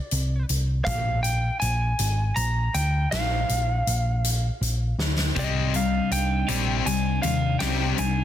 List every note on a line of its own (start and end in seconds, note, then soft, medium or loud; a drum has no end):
0.00 0.45 D5 medium
0.11 0.43 C2 medium
0.11 closed hi-hat medium
0.49 0.80 C2 medium
0.49 closed hi-hat medium
0.85 1.49 A#1 medium
0.85 1.22 F5 medium
0.85 kick loud
0.85 closed hi-hat medium
1.23 1.59 G5 medium
1.23 closed hi-hat medium
1.60 1.93 A#1 medium
1.60 2.38 G#5 medium
1.60 closed hi-hat medium
1.99 2.30 G#1 medium
1.99 closed hi-hat medium
2.36 2.68 A#1 medium
2.36 2.75 A#5 loud
2.36 closed hi-hat medium
2.74 3.06 D2 medium
2.74 3.09 G5 medium
2.74 closed hi-hat medium
3.11 3.43 A#1 medium
3.11 4.95 F5 medium
3.11 snare loud
3.11 closed hi-hat medium
3.49 3.81 A#1 medium
3.49 closed hi-hat medium
3.87 4.49 A#1 medium
3.87 closed hi-hat medium
4.24 closed hi-hat medium
4.61 4.92 A#1 medium
4.61 closed hi-hat medium
4.99 5.30 D2 medium
4.99 snare medium
5.18 snare medium
5.35 5.99 C2 medium
5.35 6.49 C3 medium
5.35 6.49 G3 medium
5.35 5.75 C4 medium
5.35 5.72 D#4 medium
5.35 kick loud
5.35 closed hi-hat medium
5.39 5.73 D#5 medium
5.73 6.08 C3 medium
5.73 6.08 G3 medium
5.73 6.48 C4 medium
5.73 6.48 D4 medium
5.73 6.46 D#4 medium
5.73 6.12 F5 medium
5.73 closed hi-hat medium
6.11 6.42 C2 medium
6.11 6.86 G5 medium
6.11 closed hi-hat medium
6.47 6.80 A#1 medium
6.47 7.24 C3 medium
6.47 6.84 G3 medium
6.47 6.85 C4 medium
6.47 6.86 D4 medium
6.47 6.86 D#4 medium
6.47 closed hi-hat medium
6.85 7.17 C2 medium
6.85 7.20 C3 medium
6.85 7.59 G3 medium
6.85 7.24 C4 medium
6.85 7.23 D4 medium
6.85 7.21 D#4 medium
6.85 7.21 G#5 medium
6.85 closed hi-hat medium
7.22 7.55 D#2 medium
7.22 7.57 C3 medium
7.22 7.57 G3 medium
7.22 7.61 C4 medium
7.22 7.62 D4 medium
7.22 7.61 D#4 medium
7.22 7.59 F5 medium
7.22 closed hi-hat medium
7.59 7.92 C2 medium
7.59 8.24 C3 medium
7.59 8.24 G3 medium
7.59 7.98 C4 medium
7.59 7.98 D4 medium
7.59 7.95 D#4 loud
7.59 7.99 G5 medium
7.59 snare loud
7.59 closed hi-hat medium
7.96 8.24 C2 medium
7.96 8.24 C3 medium
7.96 8.24 G3 medium
7.96 8.24 C4 medium
7.96 8.24 D4 medium
7.96 8.24 D#4 medium
7.96 8.24 G#5 medium
7.96 closed hi-hat medium